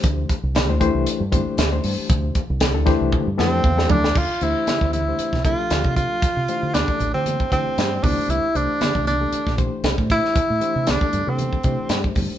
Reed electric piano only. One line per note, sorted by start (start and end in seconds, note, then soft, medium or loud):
0.00 0.34 E3 medium
0.00 0.34 A3 medium
0.00 0.34 D4 medium
0.00 0.34 G4 medium
0.00 0.34 C5 medium
0.56 0.62 G4 soft
0.56 0.62 C5 soft
0.68 0.78 E3 medium
0.68 0.78 A3 medium
0.68 0.78 D4 medium
0.68 0.78 G4 medium
0.68 0.78 C5 medium
0.80 1.21 E3 loud
0.80 1.21 A3 loud
0.80 1.21 D4 medium
0.80 1.21 G4 medium
0.80 1.22 C5 loud
1.31 1.62 E3 loud
1.31 1.62 A3 medium
1.31 1.62 D4 medium
1.31 1.62 G4 medium
1.31 1.62 C5 loud
1.72 2.41 E3 medium
1.72 2.41 A3 medium
1.72 2.41 D4 medium
1.72 2.41 G4 medium
1.72 2.41 C5 medium
2.61 2.68 G4 soft
2.61 2.68 D5 soft
2.74 2.84 E3 medium
2.74 2.84 A3 medium
2.74 2.84 D4 medium
2.74 2.84 G4 medium
2.74 2.84 A4 medium
2.86 3.27 E3 loud
2.86 3.27 A3 loud
2.86 3.27 D4 loud
2.86 3.27 G4 medium
2.86 3.27 C5 loud
3.38 3.68 E3 loud
3.38 3.68 A3 medium
3.38 3.68 D4 medium
3.38 3.68 G4 medium
3.38 3.69 A4 loud
3.38 3.62 A5 medium
3.64 3.88 F5 medium
3.77 4.16 E3 medium
3.77 4.15 A3 medium
3.77 4.16 D4 medium
3.77 4.16 G4 medium
3.77 4.16 A4 medium
3.90 4.14 D5 medium
4.42 4.72 E3 medium
4.42 4.72 A3 medium
4.42 4.72 D4 medium
4.42 4.72 G4 medium
4.42 4.72 C5 medium
4.82 5.01 E3 medium
4.82 5.01 A3 medium
4.82 5.01 D4 medium
4.82 5.01 G4 medium
4.82 5.02 C5 medium
5.08 5.37 E3 medium
5.08 5.37 A3 medium
5.08 5.37 D4 medium
5.08 5.37 G4 medium
5.08 5.37 C5 medium
5.45 6.25 F3 medium
5.45 6.25 A3 medium
5.45 6.25 D4 medium
5.45 6.25 G4 medium
5.45 6.25 A4 medium
6.49 6.79 E3 medium
6.49 6.79 A3 medium
6.49 6.79 D4 medium
6.49 6.79 G4 medium
6.49 6.79 C5 medium
6.88 7.08 E3 medium
6.88 7.08 A3 medium
6.88 7.08 D4 medium
6.88 7.08 G4 medium
6.88 7.08 A4 medium
7.14 7.44 E3 medium
7.14 7.44 A3 medium
7.14 7.44 D4 medium
7.14 7.44 G4 medium
7.14 7.44 C5 medium
7.52 8.03 E3 medium
7.52 8.03 A3 medium
7.52 8.03 D4 medium
7.52 8.03 G4 medium
7.52 8.04 D5 medium
8.04 8.46 E3 medium
8.04 8.46 A3 medium
8.04 8.46 D4 medium
8.04 8.46 G4 medium
8.04 8.46 C5 medium
8.55 8.85 E3 medium
8.55 8.85 A3 medium
8.55 8.85 D4 medium
8.55 8.85 G4 medium
8.55 8.85 C5 medium
8.95 9.14 E3 medium
8.95 9.14 A3 medium
8.95 9.14 D4 medium
8.95 9.15 G4 medium
8.95 9.14 D5 medium
9.20 9.50 E3 medium
9.20 9.50 A3 medium
9.20 9.50 D4 medium
9.20 9.50 G4 medium
9.20 9.50 A4 medium
9.58 10.38 E3 medium
9.58 10.38 A3 medium
9.58 10.38 D4 medium
9.58 10.38 G4 medium
9.58 10.38 C5 medium
10.61 10.91 E3 medium
10.61 10.92 A3 medium
10.61 10.92 D4 medium
10.61 10.92 G4 medium
10.61 10.92 C5 medium
11.01 11.21 E3 medium
11.01 11.21 A3 medium
11.01 11.21 D4 medium
11.01 11.21 G4 medium
11.01 11.21 A4 medium
11.27 11.57 E3 medium
11.27 11.57 A3 medium
11.27 11.57 D4 medium
11.27 11.57 G4 medium
11.27 11.57 A4 medium
11.65 12.38 E3 medium
11.65 12.38 A3 medium
11.65 12.38 D4 medium
11.65 12.38 G4 medium
11.65 12.38 C5 medium